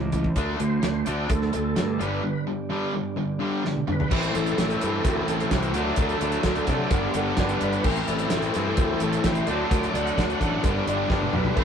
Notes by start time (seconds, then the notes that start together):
Already playing: C#2 A2 E3 A3 C4 E4 C5
0.12 A2 E3, kick, closed hi-hat
0.24 kick
0.36 D2 D3 A3 D4 F#4 D5, kick, closed hi-hat, cowbell
0.59 D2 D3 A3 C5, closed hi-hat
0.83 D2 D3 A3, snare, closed hi-hat, cowbell
1.04 D2 D3 A3 D4 D5, closed hi-hat
1.30 D2 D3 A3 A4, kick, closed hi-hat, cowbell
1.42 snare
1.53 D2 D3 A3, closed hi-hat
1.76 G2 D3 A3, snare, closed hi-hat, cowbell
1.99 G1 G2 D3 G3 B3 D4 G4 B4 D5, closed hi-hat
2.24 G2 D3
2.47 G2 D3
2.70 G2 D3 G3
2.93 G2 D3
3.16 G2 D3
3.39 G2 D3 G3
3.65 G2 D3, snare
3.77 high tom
3.88 G2 D3, mid tom
3.92 B4
4.00 floor tom
4.11 A1 A2 E3 A3 C4 E4 A4 C5, kick, crash, cowbell
4.23 closed hi-hat
4.34 A1 A3 C4 E4 A4 B4, closed hi-hat
4.46 closed hi-hat
4.57 A1 E3 A3 C4 E4 A4, snare, closed hi-hat, cowbell
4.70 closed hi-hat
4.81 G2 A3 C4 E4 A4, closed hi-hat
5.03 D2 A2 E3 A3 C4 E4 F#4, kick, closed hi-hat, cowbell
5.08 A4
5.28 A1 A3 C4 E4 A4, closed hi-hat
5.40 closed hi-hat
5.49 C2 A2 E3 A3 C4 E4 A4, kick, snare, closed hi-hat, cowbell
5.53 E4 F#4
5.63 closed hi-hat
5.74 D2 D3 F#3 A3 D4 F#4 A4 D5, closed hi-hat
5.78 D4
5.96 D2 D3 F#3 A3 A4, kick, closed hi-hat, cowbell
6.01 D4
6.09 closed hi-hat
6.21 D2 F#3 A3 D4 F#4 A4, closed hi-hat
6.32 closed hi-hat
6.43 D2 D3 F#3 A3 D4 F#4 B4, kick, snare, closed hi-hat, cowbell
6.48 A3 D4
6.55 closed hi-hat
6.67 C3 A3 D4 F#4 A4, kick, snare, closed hi-hat
6.71 F#3
6.89 G1 G2 D3 G3 B3 D4 G4 B4 D5, kick, closed hi-hat, cowbell
6.93 B3 D4
7.14 G1 G3 B3 D4 G4 A4, closed hi-hat
7.36 G1 G2 D3 G3 B3 D4 G4 B4, kick, snare, closed hi-hat, cowbell
7.41 B3 D4
7.49 closed hi-hat
7.61 G1 B3 D4 G4 B4 D5, closed hi-hat
7.73 closed hi-hat
7.83 A1 A2 E3 A3 C4 E4 A4 C5, kick, cowbell, crash
7.88 C4 E4
7.96 closed hi-hat
8.06 A1 C4 E4 A4 D5, closed hi-hat
8.11 A3
8.19 closed hi-hat
8.30 A1 E3 C4 E4 A4 C5, snare, closed hi-hat, cowbell
8.34 A3 C4 E4
8.42 closed hi-hat
8.52 G2 C4 E4 A4 B4, snare, closed hi-hat
8.57 A3 C4
8.76 D2 A2 E3 C4 E4 A4 C5, kick, closed hi-hat, cowbell
8.80 A3 C4 E4 A4
8.98 A1 C4 E4 A4 C5, closed hi-hat
9.03 A3 C4
9.13 closed hi-hat
9.21 A1 A2 E3 C4 E4 A4 C5, kick, snare, closed hi-hat, cowbell
9.26 A3 C4 E4 C5
9.35 closed hi-hat
9.46 D2 D3 A3 D4 F#4 A4 D5, closed hi-hat
9.51 D3 F#3
9.71 D2 D3 F#3 A3 D4 D5, kick, closed hi-hat, cowbell
9.83 closed hi-hat
9.92 D2 A3 D4 F#4 A4 D5, closed hi-hat
9.97 F#3 F#5
10.07 closed hi-hat
10.16 D2 D3 F#3 A3 D4 F#4 A4 D5, kick, snare, closed hi-hat, cowbell
10.20 D4
10.30 closed hi-hat
10.39 A1 A3 D4 F#4 A4 D5, kick, closed hi-hat
10.44 F#3
10.62 G1 G2 D3 G3 B3 D4 G4 B4 D5, kick, closed hi-hat, cowbell
10.66 B3 D4
10.86 G1 G3 B3 D4 G4 B4 D5, closed hi-hat
11.08 G1 G2 D3 G3 B3 D4 G4 B4 E5, kick, snare, cowbell
11.12 D4
11.22 high tom
11.32 B1 D4 G4 B4 D5, mid tom
11.45 floor tom
11.55 A1 A2 E3 A3 C4 E4 A4 C5, kick, crash, cowbell
11.59 E4 C5